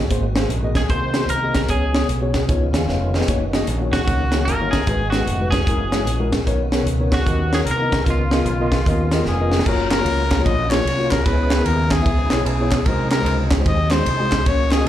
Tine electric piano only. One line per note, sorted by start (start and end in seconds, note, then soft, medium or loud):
0.10 0.72 G#2 medium
0.10 0.24 A#3 medium
0.10 0.25 F#4 medium
0.10 0.25 G#4 medium
0.10 0.25 C5 medium
0.36 0.48 A#3 medium
0.36 0.48 F#4 medium
0.36 0.48 G#4 medium
0.36 0.49 C5 medium
0.63 0.80 A#3 medium
0.63 0.80 F#4 medium
0.63 0.81 G#4 medium
0.63 0.81 D#5 medium
0.89 1.04 A#3 medium
0.89 1.04 F#4 medium
0.89 1.04 G#4 medium
0.89 1.04 C5 medium
1.16 1.27 A#3 medium
1.16 1.28 F#4 medium
1.16 1.28 G#4 medium
1.16 1.28 C5 medium
1.42 1.60 A#3 medium
1.42 1.60 F#4 medium
1.42 1.60 G#4 medium
1.42 1.61 D#5 medium
1.68 2.31 C#3 medium
1.68 1.83 B3 medium
1.68 1.83 F#4 medium
1.68 1.83 G#4 medium
1.68 1.84 C#5 medium
1.93 2.06 B3 medium
1.93 2.06 F#4 medium
1.93 2.06 G#4 medium
1.93 2.07 C#5 medium
2.21 2.39 B3 medium
2.21 2.39 F#4 medium
2.21 2.40 G#4 medium
2.21 2.40 C#5 medium
2.49 3.10 C#3 medium
2.49 2.63 B3 medium
2.49 2.63 D#4 medium
2.49 2.63 F4 medium
2.49 2.64 C#5 medium
2.74 2.88 F5 medium
2.74 2.88 G#5 medium
2.89 3.13 C#5 medium
2.89 3.13 F5 medium
3.15 3.52 B4 soft
3.15 3.52 D#5 medium
3.28 3.42 A#3 medium
3.28 3.42 D#4 medium
3.28 3.43 F#4 medium
3.28 3.43 C#5 medium
3.53 3.65 A#3 medium
3.53 3.65 D#4 medium
3.53 3.66 F#4 medium
3.53 3.66 D#5 medium
3.80 3.98 A#3 medium
3.80 3.98 D#4 medium
3.80 3.98 F#4 medium
3.80 3.99 C#5 medium
4.07 4.21 A#3 medium
4.07 4.22 D#4 medium
4.07 4.22 F#4 medium
4.07 4.22 C#5 medium
4.33 4.45 A#3 medium
4.33 4.45 D#4 medium
4.33 4.45 F#4 medium
4.33 4.46 C#5 medium
4.60 4.77 A#3 medium
4.60 4.78 D#4 medium
4.60 4.78 F#4 medium
4.60 4.78 C#5 medium
4.87 5.49 G#2 medium
4.87 5.01 G#3 medium
4.87 5.02 D#4 medium
4.87 5.02 F#4 medium
4.87 5.02 B4 medium
5.13 5.25 G#3 medium
5.13 5.25 D#4 medium
5.13 5.26 F#4 medium
5.13 5.26 B4 medium
5.40 5.57 G#3 medium
5.40 5.58 D#4 medium
5.40 5.58 F#4 medium
5.40 5.58 B4 medium
5.68 5.81 G#3 medium
5.68 5.82 E4 medium
5.68 5.82 F#4 medium
5.68 5.82 A#4 medium
5.94 6.05 G#3 medium
5.94 6.05 E4 medium
5.94 6.06 F#4 medium
5.94 6.06 C#5 medium
6.19 6.37 G#3 medium
6.19 6.37 E4 medium
6.19 6.37 F#4 medium
6.19 6.38 A#4 medium
6.46 7.08 B2 medium
6.46 6.61 B3 medium
6.46 6.61 D#4 medium
6.46 6.61 A#4 medium
6.46 6.61 C#5 medium
6.73 6.85 B3 medium
6.73 6.85 D#4 medium
6.73 6.85 A#4 medium
6.73 6.85 C#5 medium
6.99 7.17 B3 medium
6.99 7.17 D#4 medium
6.99 7.17 A#4 medium
6.99 7.18 C#5 medium
7.27 7.41 B3 medium
7.27 7.41 D#4 medium
7.27 7.41 A#4 medium
7.27 7.42 D#5 medium
7.53 7.65 B3 medium
7.53 7.65 D#4 medium
7.53 7.65 A#4 medium
7.53 7.66 C#5 medium
7.81 7.97 B3 medium
7.81 7.98 D#4 medium
7.81 7.98 A#4 medium
7.81 7.98 D#5 medium
8.07 8.69 C#3 medium
8.07 8.21 B3 medium
8.07 8.21 F4 medium
8.07 8.21 A#4 medium
8.07 8.22 D#5 medium
8.32 8.44 B3 medium
8.32 8.44 F4 medium
8.32 8.44 A#4 medium
8.32 8.45 D#5 medium
8.60 8.77 B3 medium
8.60 8.77 F4 medium
8.60 8.78 A#4 medium
8.60 8.78 D#5 medium
8.87 9.01 B3 medium
8.87 9.01 F4 medium
8.87 9.01 A#4 medium
8.87 9.01 D#5 medium
9.12 9.24 B3 medium
9.12 9.24 F4 medium
9.12 9.24 A#4 medium
9.12 9.25 D#5 medium
9.40 9.57 B3 medium
9.40 9.57 F4 medium
9.40 9.58 A#4 medium
9.40 9.58 D#5 medium
9.68 9.88 A#3 medium
9.68 9.88 F4 medium
9.68 9.89 F#4 medium
9.68 9.89 C#5 medium
9.99 10.22 A#3 medium
9.99 10.22 F4 medium
9.99 10.22 F#4 medium
9.99 10.23 C#5 medium
10.39 10.55 A#3 medium
10.39 10.55 F4 medium
10.39 10.55 F#4 medium
10.39 10.55 C#5 medium
10.70 10.83 A#3 medium
10.70 10.83 F4 medium
10.70 10.84 F#4 medium
10.70 10.84 G#4 medium
10.97 11.16 A#3 medium
10.97 11.16 F4 medium
10.97 11.16 F#4 medium
10.97 11.17 C#5 medium
11.25 11.88 C#3 medium
11.25 11.47 B3 medium
11.25 11.47 E4 medium
11.25 11.47 G#4 medium
11.25 11.47 C#5 medium
11.59 11.81 B3 medium
11.59 11.82 E4 medium
11.59 11.82 G#4 medium
11.59 11.82 A#4 medium
12.01 12.15 B3 medium
12.01 12.16 E4 medium
12.01 12.15 G#4 medium
12.01 12.16 E5 medium
12.32 12.44 B3 medium
12.32 12.44 E4 medium
12.32 12.44 G#4 medium
12.32 12.44 C#5 medium
12.60 12.77 B3 medium
12.60 12.77 E4 medium
12.60 12.78 G#4 medium
12.60 12.78 C#5 medium
12.87 13.49 C3 medium
12.87 13.08 G#3 medium
12.87 13.08 D#4 medium
12.87 13.09 F#4 medium
12.87 13.09 C5 medium
13.19 13.42 G#3 medium
13.19 13.42 D#4 medium
13.19 13.42 F#4 medium
13.19 13.42 C5 medium
13.59 13.75 G#3 medium
13.59 13.74 D#4 medium
13.59 13.75 F#4 medium
13.59 13.75 C5 medium
13.90 14.03 G#3 medium
13.90 14.03 D#4 medium
13.90 14.03 F#4 medium
13.90 14.04 C5 medium
14.20 14.37 G#3 medium
14.20 14.37 D#4 medium
14.20 14.37 F#4 medium
14.20 14.38 G#4 medium
14.48 14.89 C#3 medium
14.48 14.68 A#3 medium
14.48 14.69 C#4 medium
14.48 14.69 F#4 medium
14.48 14.69 C#5 medium
14.79 14.89 A#3 medium
14.79 14.89 C#4 medium
14.79 14.89 F#4 medium
14.79 14.89 D#5 medium